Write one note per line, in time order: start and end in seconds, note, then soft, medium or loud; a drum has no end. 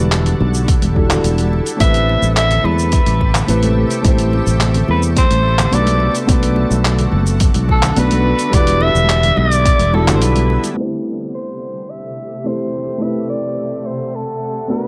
0.00 0.33 E1 medium
0.00 1.76 D3 medium
0.00 0.92 G3 medium
0.00 1.78 G3 medium
0.00 0.93 D4 medium
0.00 0.93 E4 medium
0.00 1.78 E4 medium
0.00 0.94 F#4 medium
0.00 8.49 A4 medium
0.00 0.95 B4 loud
0.12 clap medium
0.12 closed hi-hat medium
0.12 shaker medium
0.26 closed hi-hat soft
0.26 low conga medium
0.26 shaker soft
0.40 0.75 B1 medium
0.40 high conga medium
0.54 shaker medium
0.68 kick loud
0.68 closed hi-hat medium
0.68 shaker medium
0.82 1.17 E1 medium
0.82 closed hi-hat soft
0.82 high conga medium
0.82 shaker soft
0.94 1.05 G3 medium
0.94 1.06 D4 medium
0.94 1.07 E4 medium
0.94 1.07 F#4 medium
0.94 1.08 A4 medium
0.94 kick medium
1.07 1.75 G3 medium
1.07 1.76 D4 medium
1.07 1.77 E4 medium
1.07 clap medium
1.07 low conga medium
1.07 shaker medium
1.12 1.78 F#4 medium
1.12 1.78 A4 medium
1.24 1.59 E1 medium
1.24 closed hi-hat medium
1.24 shaker soft
1.38 closed hi-hat soft
1.38 high conga medium
1.38 shaker soft
1.53 muted conga soft
1.66 closed hi-hat soft
1.66 shaker medium
1.76 2.15 A1 medium
1.76 5.97 C3 medium
1.76 3.43 A3 medium
1.76 8.49 A3 medium
1.76 3.44 C4 medium
1.76 3.45 E4 medium
1.76 5.96 G4 medium
1.76 closed hi-hat medium
1.76 high conga medium
1.76 shaker medium
1.80 3.46 G4 medium
1.80 3.47 B4 loud
1.80 2.33 E5 loud
1.80 kick loud
1.94 closed hi-hat soft
1.94 shaker soft
2.09 muted conga medium
2.22 2.57 A1 medium
2.22 high conga medium
2.22 shaker medium
2.36 2.67 E5 loud
2.36 clap medium
2.36 closed hi-hat medium
2.36 shaker medium
2.51 closed hi-hat soft
2.51 low conga medium
2.51 shaker soft
2.64 2.99 E2 medium
2.64 3.77 B4 medium
2.64 high conga medium
2.79 shaker medium
2.92 kick loud
2.92 closed hi-hat medium
2.92 shaker medium
3.06 3.41 A1 medium
3.06 closed hi-hat soft
3.06 high conga medium
3.06 shaker soft
3.21 kick medium
3.21 muted conga medium
3.34 clap medium
3.34 low conga medium
3.34 shaker medium
3.46 3.83 A1 medium
3.46 4.00 A3 medium
3.46 4.00 C4 medium
3.46 4.01 E4 medium
3.46 4.01 G4 medium
3.46 4.02 B4 medium
3.46 closed hi-hat medium
3.46 shaker soft
3.63 closed hi-hat soft
3.63 high conga medium
3.63 shaker soft
3.90 closed hi-hat soft
3.90 shaker medium
4.01 4.39 A1 medium
4.01 5.68 A3 medium
4.01 5.68 C4 medium
4.01 5.69 E4 medium
4.01 kick loud
4.01 closed hi-hat medium
4.01 high conga medium
4.01 shaker soft
4.06 5.70 G4 medium
4.06 5.71 C5 loud
4.18 closed hi-hat soft
4.18 shaker soft
4.33 muted conga medium
4.47 4.82 A1 medium
4.47 high conga medium
4.47 shaker medium
4.60 clap medium
4.60 closed hi-hat medium
4.60 shaker medium
4.74 closed hi-hat soft
4.74 low conga medium
4.74 shaker soft
4.88 5.24 E2 loud
4.88 5.03 B4 medium
4.88 high conga medium
5.02 shaker medium
5.17 5.76 C5 medium
5.17 kick loud
5.17 closed hi-hat medium
5.17 shaker medium
5.31 5.66 A1 medium
5.31 closed hi-hat soft
5.31 high conga medium
5.31 shaker soft
5.59 clap medium
5.59 low conga medium
5.59 shaker medium
5.71 6.07 B1 medium
5.71 6.24 A3 medium
5.71 6.25 B3 medium
5.71 6.25 D4 medium
5.71 6.26 F#4 medium
5.71 6.26 B4 medium
5.71 6.16 D5 medium
5.71 closed hi-hat medium
5.71 shaker soft
5.86 closed hi-hat soft
5.86 high conga medium
5.86 shaker soft
6.00 10.73 D3 medium
6.00 8.51 F#4 loud
6.00 muted conga medium
6.15 closed hi-hat soft
6.15 shaker medium
6.26 6.64 B1 medium
6.26 7.92 A3 medium
6.26 7.93 B3 medium
6.26 7.94 D4 medium
6.26 kick loud
6.26 closed hi-hat medium
6.26 high conga medium
6.26 shaker medium
6.30 7.95 F#4 medium
6.30 7.95 B4 loud
6.43 closed hi-hat soft
6.43 shaker soft
6.56 muted conga medium
6.70 7.06 B1 medium
6.70 high conga medium
6.70 shaker medium
6.85 clap medium
6.85 closed hi-hat medium
6.85 shaker soft
6.99 closed hi-hat soft
6.99 low conga medium
6.99 shaker soft
7.11 7.48 F#1 medium
7.11 high conga medium
7.26 shaker medium
7.40 kick loud
7.40 closed hi-hat medium
7.40 shaker medium
7.54 7.90 B1 medium
7.54 closed hi-hat soft
7.54 high conga medium
7.54 shaker soft
7.69 8.00 A4 medium
7.69 kick medium
7.69 muted conga medium
7.83 clap medium
7.83 low conga medium
7.83 shaker medium
7.95 8.32 B1 medium
7.95 8.49 A3 medium
7.95 8.49 B3 medium
7.95 8.50 D4 medium
7.95 8.50 F#4 medium
7.95 8.51 B4 medium
7.95 8.56 B4 medium
7.95 closed hi-hat medium
7.95 shaker soft
8.11 closed hi-hat soft
8.11 high conga medium
8.11 shaker soft
8.39 closed hi-hat soft
8.39 shaker medium
8.50 8.88 E1 loud
8.50 9.89 G3 loud
8.50 10.75 B3 medium
8.50 9.90 D4 medium
8.50 9.90 E4 medium
8.50 10.75 E4 medium
8.50 kick loud
8.50 closed hi-hat medium
8.50 high conga medium
8.50 shaker medium
8.54 10.76 G3 medium
8.54 9.91 F#4 medium
8.54 9.92 B4 loud
8.54 8.84 D5 loud
8.67 closed hi-hat soft
8.67 shaker soft
8.81 9.40 E5 loud
8.81 muted conga medium
8.94 9.30 E1 medium
8.94 high conga medium
8.94 shaker medium
9.09 clap medium
9.09 closed hi-hat medium
9.09 shaker medium
9.23 closed hi-hat soft
9.23 low conga medium
9.23 shaker soft
9.37 9.72 B1 medium
9.37 9.96 D5 loud
9.37 high conga loud
9.52 closed hi-hat soft
9.52 shaker medium
9.65 kick loud
9.65 closed hi-hat medium
9.65 shaker medium
9.79 10.21 E1 medium
9.79 closed hi-hat soft
9.79 high conga medium
9.79 shaker soft
9.92 10.02 G3 medium
9.92 10.04 D4 medium
9.92 10.04 E4 medium
9.92 10.04 F#4 medium
9.92 10.15 A4 medium
9.92 10.05 A4 medium
9.92 muted conga medium
10.04 10.72 G3 medium
10.04 10.73 D4 medium
10.04 10.74 E4 medium
10.04 low conga medium
10.08 10.75 F#4 medium
10.08 10.76 A4 medium
10.08 clap medium
10.08 closed hi-hat soft
10.08 shaker medium
10.16 10.25 C5 medium
10.21 10.56 B1 medium
10.21 10.64 B4 medium
10.21 closed hi-hat medium
10.21 shaker soft
10.35 closed hi-hat soft
10.35 high conga medium
10.35 shaker soft
10.50 muted conga medium
10.64 closed hi-hat soft
10.64 muted conga soft
10.64 shaker medium
10.74 14.88 C3 medium
10.74 12.40 A3 medium
10.74 14.88 A3 medium
10.74 12.41 C4 medium
10.74 12.42 E4 medium
10.78 13.00 G4 medium
10.78 12.43 G4 medium
10.78 14.88 A4 medium
10.78 12.44 C5 medium
11.35 11.91 C5 medium
11.90 12.49 E5 loud
12.44 12.96 A3 medium
12.44 12.98 C4 medium
12.44 12.98 E4 medium
12.44 12.99 G4 medium
12.44 12.99 C5 medium
12.44 13.04 C5 medium
12.98 14.65 A3 medium
12.98 14.65 C4 medium
12.98 14.66 E4 medium
13.02 14.67 G4 medium
13.02 14.68 B4 medium
13.02 13.29 E5 medium
13.02 14.88 F#5 medium
13.29 13.88 D5 medium
13.86 14.17 C5 medium
14.15 14.72 A4 medium
14.68 14.88 A3 medium
14.68 14.88 B3 medium
14.68 14.88 D4 medium
14.68 14.88 F#4 medium
14.68 14.88 B4 medium